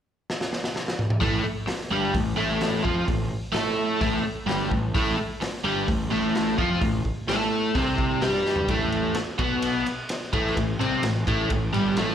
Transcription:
0.30 snare
0.41 snare
0.53 snare
0.64 snare
0.76 snare
0.88 snare
0.99 mid tom
1.10 mid tom
1.21 A1 A2 A3, kick, open hi-hat
1.44 muted picked electric bass stroke, muted overdriven electric guitar stroke
1.67 muted overdriven electric guitar stroke, muted picked electric bass stroke, snare, open hi-hat
1.81 snare
1.91 G1 G2 G3
2.14 A1 A2, kick, open hi-hat
2.36 A1 A2 A3
2.61 snare, open hi-hat
2.83 F2 F3 F4, kick
3.07 A1 A2, kick, open hi-hat
3.53 A2 A3 A4, snare, open hi-hat
4.01 A1 A2 A3, kick, open hi-hat
4.24 muted overdriven electric guitar stroke, muted picked electric bass stroke
4.46 G1 G2 G3, snare, open hi-hat
4.71 A1 A2, kick
4.94 A1 A2 A3, kick, open hi-hat
5.18 muted picked electric bass stroke, muted overdriven electric guitar stroke
5.41 muted picked electric bass stroke, muted overdriven electric guitar stroke, snare, open hi-hat
5.64 G1 G2 G3
5.87 A1 A2, kick, open hi-hat
6.09 A1 A2 A3
6.35 snare, open hi-hat
6.58 F2 F3 F4, kick
6.81 A1 A2, kick, open hi-hat
7.05 kick
7.27 A2 A3 A4, snare, open hi-hat
7.75 C2 C3 C4, kick, open hi-hat
7.98 kick
8.21 G2 G3 G4, snare, open hi-hat
8.46 snare
8.56 floor tom
8.68 A1 A2 A3, kick, ride
8.92 ride
9.14 muted picked electric bass stroke, muted overdriven electric guitar stroke, snare, ride
9.39 B1 B2 B3, kick, ride
9.62 ride
9.86 ride
10.09 snare, ride
10.33 A1 A2 A3, kick, ride
10.47 snare
10.56 A1 A2, kick, ride
10.79 C2 C3 C4, ride
11.01 A1 A2, snare, ride
11.27 A1 A2 A3, kick, ride
11.50 A1 A2, kick, ride
11.72 G1 G2 G3, ride
11.97 A1 A2 A3, snare, ride

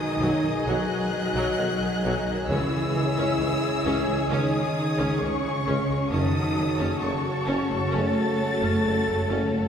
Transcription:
Already playing: D#3 G#3 D#4 F#4 G#4 B4 D#5 G#5 D#6
0.19 B1 F#3
0.43 B1 D#3
0.65 B1 F#3 F#4 F#6
1.34 B1 F#3
1.57 B1 D#3
1.80 B1 D#3
2.03 B1 F#3
2.26 B1 D#3
2.48 C#2 C#3 E3 G#3 C#4 E4 G#4 C#5 G#5 E6
2.93 C#2 E3
3.16 C#2 C#4
3.37 C#2 G#3
3.84 C#2 C#4
4.07 C#2 G#3
4.29 C#2 D#3 C#4 D#4 D#6
4.98 C#2 C#4
5.20 C#2 C#3 G#3 C#4 C#6
5.43 C#2 E3
5.66 C#2 C#4
5.88 C#2 G#3
6.11 F#1 C#3 D#3 F#3 C#4 D#4 F#4 A4 C#5 A5 D#6
6.57 F#1 F#3
6.78 F#1 C#4
7.01 F#1 C#3 A3 C#4 C#6
7.46 F#1 C#4
7.69 F#1 A3
7.91 F#1 A3 C#4 A4 A6
8.62 F#1 C#4
8.83 F#1 A3
9.07 F#1 F#3
9.29 F#1 C#4
9.52 F#1 A3

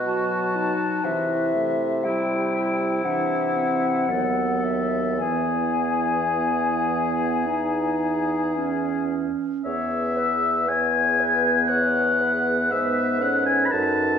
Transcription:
Already playing: B2 F#4
0.06 F#3 F#4 A5
0.56 D#4
1.04 C3 E3 E4 E5
1.56 A3
2.04 G3 E4 G5
2.55 E4
3.04 C3 E3 D4 F#5
3.56 C4
4.08 D#2 F#3 B3 A4
4.64 E5
5.19 E2 E3 B3 G#4 G#5
6.35 B3
7.46 D#4
8.56 C#4
9.65 E2 B3 G#4 C#5 E5
10.17 B4
10.68 B3 G#4 C#5 G#5
11.20 B4
11.68 C#5 F#5
12.20 B4
12.70 G#2 B3 G#4 E5
13.20 C#4 A4 F#5
13.46 G#5
13.66 B5
13.71 F#2 D#4 A4 B4 A5

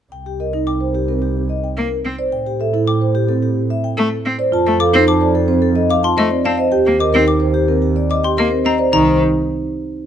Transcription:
0.12 C2 G5
0.26 G4
0.40 A#4 D#5
0.53 D#4 A#4
0.67 G5 D6
0.81 C5
0.95 G4
1.08 C4 A#4
1.22 G4
1.49 D#5
1.64 G5
1.77 A#3 A#4
2.05 C4
2.19 C5 D5
2.32 A2 G5
2.46 G4
2.60 A4 E5
2.73 E4 A4
2.88 G5 D6
3.01 C5
3.15 G4
3.29 C4 A4
3.42 G4
3.70 E5
3.84 G5
3.97 A3 A4
4.25 C4
4.39 C5 D5
4.52 F2 F4 A5
4.66 A3 A4
4.79 A4 F5 D6
4.93 C4 D#4 C5
5.07 A5 D6
5.21 C5 D5
5.35 A4
5.48 C4 C5
5.62 A4
5.76 D#5
5.90 F5 D6
6.03 F4 A5 C6
6.17 A3 C5 D#5
6.31 C4 D5
6.44 C4 F5 A5
6.58 C5 D#5
6.72 D#2 G4 G5
6.85 A#3 G4
6.99 A#4 D#5 D6
7.13 C4 D#4 A#4
7.26 G5 D6
7.40 C5
7.54 G4
7.68 C4 A#4
7.82 G4
7.96 D5
8.10 D#5 D6
8.24 G4 G5 C6
8.37 A#3 A#4 D#5
8.51 C4 C5
8.64 C4 D#5 A#5
8.78 C5 D5
8.92 C2 D#3 D#4 C5 A#5

